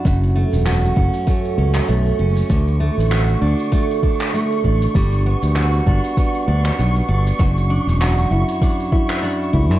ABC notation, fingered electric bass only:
X:1
M:4/4
L:1/16
Q:"Swing 16ths" 1/4=98
K:D
V:1 name="Fingered electric bass" clef=bass
F,,,2 z E,,,2 z F,,, z3 C,, z B,,, z F,,, z | D,,2 z A,,,2 z D,, z6 z A,,, z | G,,,2 z D,,2 z G,,, z3 D,, z B,,, z G,,, z | F,,,2 z E,,,2 z F,,, z6 z C,, F,, |]